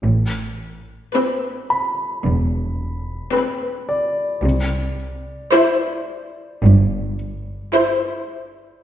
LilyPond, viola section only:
\new Staff \with { instrumentName = "Viola section" } { \time 4/4 \key a \minor \tempo 4 = 55 r4 <c' b'>4 r4 <c' b'>4 | r4 <e' c''>4 r4 <e' c''>4 | }